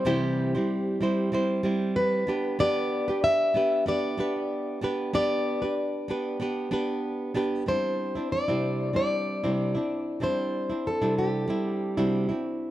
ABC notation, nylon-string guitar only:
X:1
M:4/4
L:1/16
Q:"Swing 16ths" 1/4=94
K:Clyd
V:1 name="Nylon-string guitar"
[C,E,G,CEc]3 [G,CEc]3 [G,CEc]2 [G,CEc]2 [G,CE]4 [B,DGB]2 | [B,DGB]3 [DGB]3 [B,DGB]2 [B,DGB]2 [B,DGB]4 [B,DGB]2 | [B,DGB]3 [DGB]3 [B,DGB]2 [B,DGB]2 [B,DGB]4 [B,DGB]2 | [G,CDE]3 [CDE]2 [C,G,CDE]3 [G,CDE]3 [C,G,CDE]2 [CDE]3 |
[G,CDE]3 [CDE]2 [C,G,CDE]3 [G,CDE]3 [C,G,CDE]2 [CDE]3 |]